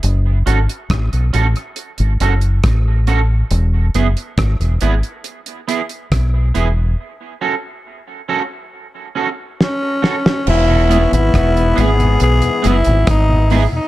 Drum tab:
CC |----------------|----------------|----------------|x---------------|
HH |x-xxxxxxxxxxx-x-|x-xxxxxxxxxxx-x-|----------------|--xxxxxxxxxxx-o-|
SD |----r-------r---|----r-------r---|------------o-oo|----r-------r---|
BD |----o-------o---|----o-------o---|----------------|----o-------o---|